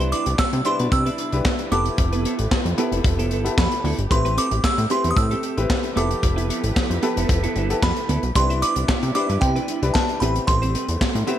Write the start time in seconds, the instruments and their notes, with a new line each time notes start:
Already playing: analog synth bass C2, string section C3 G3 B3 D4 E4, grand piano D4 E4 G4 B4, synth bell C6
0.00 clean electric guitar D4 E4 C5, closed hi-hat
0.12 clean electric guitar D4 E4 B4, synth bell D6, closed hi-hat
0.26 analog synth bass C2, closed hi-hat
0.39 analog synth bass C3, synth bell E6, kick, snare, clap
0.53 analog synth bass C3, muted clean electric guitar stroke, closed hi-hat
0.65 grand piano D4 E4 G4 B4, clean electric guitar D4 E4 C5, synth bell C6, closed hi-hat
0.79 analog synth bass B2, clean electric guitar D4 E4 B4, closed hi-hat
0.92 analog synth bass C3, synth bell E6, kick, closed hi-hat
1.06 clean electric guitar D4 E4 B4, closed hi-hat
1.18 clean electric guitar D4 E4 B4, closed hi-hat
1.32 analog synth bass C2, grand piano D4 E4 G4 B4, muted clean electric guitar stroke, closed hi-hat
1.45 muted clean electric guitar stroke, kick, snare, clap
1.59 muted clean electric guitar stroke, closed hi-hat
1.72 analog synth bass F1, string section C3 F3 G4 A4 B4, clean electric guitar B3 E4 A4, grand piano B3 E4 G4 A4, synth bell D6, closed hi-hat
1.85 muted clean electric guitar stroke, closed hi-hat
1.98 analog synth bass F1, muted clean electric guitar stroke, kick, closed hi-hat
2.13 clean electric guitar B3 E4 B4, closed hi-hat
2.25 clean electric guitar B3 E4 A4, closed hi-hat
2.39 analog synth bass A1, muted clean electric guitar stroke, closed hi-hat
2.51 muted clean electric guitar stroke, kick, snare, clap
2.65 analog synth bass F2, muted clean electric guitar stroke, closed hi-hat
2.77 grand piano B3 E4 G4 A4, clean electric guitar B3 E4 B4, closed hi-hat
2.92 analog synth bass F1, clean electric guitar B3 E4 A4, closed hi-hat
3.04 analog synth bass F1, kick, closed hi-hat
3.19 clean electric guitar B3 E4 A4, closed hi-hat
3.31 analog synth bass G1, clean electric guitar B3 E4 A4, closed hi-hat
3.44 grand piano B3 E4 G4 A4, muted clean electric guitar stroke, closed hi-hat
3.58 analog synth bass F2, synth bell B5, kick, snare, clap
3.72 muted clean electric guitar stroke, closed hi-hat
3.84 analog synth bass D2, clean electric guitar B3 E4 A4, open hi-hat
3.98 analog synth bass G1, muted clean electric guitar stroke, closed hi-hat
4.10 analog synth bass A1, string section C3 A3, grand piano C4 E4 G4 B4, synth bell C6, muted clean electric guitar stroke, kick, closed hi-hat
4.25 clean electric guitar C4 G4 B4, closed hi-hat
4.37 clean electric guitar C4 G4 A4, synth bell D6, closed hi-hat
4.51 analog synth bass A1, closed hi-hat
4.64 analog synth bass A2, synth bell E6, muted clean electric guitar stroke, kick, snare, clap
4.78 analog synth bass A2, muted clean electric guitar stroke, closed hi-hat
4.90 grand piano C4 E4 G4 B4, clean electric guitar C4 G4 B4, synth bell C6, closed hi-hat
5.04 analog synth bass E2, clean electric guitar C4 G4 A4, closed hi-hat
5.11 synth bell D#6
5.16 analog synth bass A2, synth bell E6, kick, closed hi-hat
5.31 clean electric guitar C4 G4 A4, closed hi-hat
5.43 clean electric guitar C4 G4 A4, closed hi-hat
5.57 analog synth bass A1, grand piano C4 E4 G4 B4, muted clean electric guitar stroke, closed hi-hat
5.70 muted clean electric guitar stroke, kick, snare, clap
5.84 muted clean electric guitar stroke, closed hi-hat
5.96 analog synth bass F1, string section F3 E4 A4 B4, clean electric guitar B3 E4 A4, grand piano B3 E4 G4 A4, synth bell D6, closed hi-hat
6.10 muted clean electric guitar stroke, closed hi-hat
6.22 analog synth bass F1, muted clean electric guitar stroke, kick, closed hi-hat
6.36 clean electric guitar B3 E4 B4, closed hi-hat
6.49 clean electric guitar B3 E4 A4, closed hi-hat
6.63 analog synth bass A1, closed hi-hat
6.76 analog synth bass F2, muted clean electric guitar stroke, kick, snare, clap
6.90 analog synth bass F2, muted clean electric guitar stroke, closed hi-hat
7.02 clean electric guitar B3 E4 B4, grand piano B3 E4 G4 A4, closed hi-hat
7.17 analog synth bass F1, clean electric guitar B3 E4 A4, closed hi-hat
7.29 analog synth bass F1, kick, closed hi-hat
7.43 clean electric guitar B3 E4 A4, closed hi-hat
7.56 analog synth bass G1, clean electric guitar B3 E4 A4, closed hi-hat
7.70 grand piano B3 E4 G4 A4, closed hi-hat
7.82 analog synth bass F2, synth bell B5, kick, snare, clap
7.96 muted clean electric guitar stroke, closed hi-hat
8.09 analog synth bass D2, clean electric guitar B3 E4 A4, closed hi-hat
8.23 analog synth bass B1, muted clean electric guitar stroke, closed hi-hat
8.35 analog synth bass C2, string section C3 G3 B3 D4 E4, grand piano D4 E4 G4 B4, synth bell C6, muted clean electric guitar stroke, kick, closed hi-hat
8.50 clean electric guitar D4 E4 C5, closed hi-hat
8.62 clean electric guitar D4 E4 B4, synth bell D6, closed hi-hat
8.76 analog synth bass C2, closed hi-hat
8.89 analog synth bass C3, muted clean electric guitar stroke, kick, snare, clap
9.03 analog synth bass C3, muted clean electric guitar stroke, closed hi-hat
9.15 grand piano D4 E4 G4 B4, clean electric guitar D4 E4 C5, synth bell D6, closed hi-hat
9.29 analog synth bass G2, clean electric guitar D4 E4 B4, closed hi-hat
9.41 analog synth bass C3, synth bell G5, kick, closed hi-hat
9.56 clean electric guitar D4 E4 B4, closed hi-hat
9.68 clean electric guitar D4 E4 B4, closed hi-hat
9.82 analog synth bass C2, grand piano D4 E4 G4 B4, muted clean electric guitar stroke, closed hi-hat
9.94 synth bell A5, muted clean electric guitar stroke, kick, snare, clap
10.09 muted clean electric guitar stroke, closed hi-hat
10.20 analog synth bass A1, string section C3 A3, grand piano B3 C4 E4 G4, clean electric guitar C4 G4 B4, synth bell B5, closed hi-hat
10.36 muted clean electric guitar stroke, closed hi-hat
10.47 analog synth bass A1, synth bell C6, muted clean electric guitar stroke, kick, closed hi-hat
10.62 clean electric guitar C4 G4 C5, closed hi-hat
10.75 clean electric guitar C4 G4 B4, closed hi-hat
10.88 analog synth bass E2, muted clean electric guitar stroke, closed hi-hat
11.01 analog synth bass A2, muted clean electric guitar stroke, kick, snare, clap
11.15 analog synth bass A2, muted clean electric guitar stroke, closed hi-hat
11.27 grand piano B3 C4 E4 G4, clean electric guitar C4 G4 C5, closed hi-hat